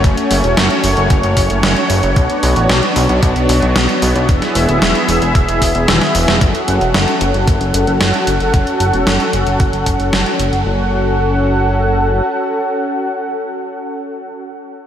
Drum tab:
HH |xxoxxxoxxxoxxxox|xxoxxxoxxxoxxxox|xxoxxxoxxxoxxxox|xxxxxxxxxxxxxxxx|
SD |----o-------o---|----o-------o---|-o--o-------oo-o|----o-------o---|
T1 |----------------|----------------|------------o---|----------------|
BD |o-------o-o-----|o-------o-------|o-------o-o-----|o-------o-------|

HH |xxxxxxxxxxxxxxxx|----------------|----------------|
SD |----o-------o---|----------------|----------------|
T1 |----------------|----------------|----------------|
BD |o-------o-o-----|----------------|----------------|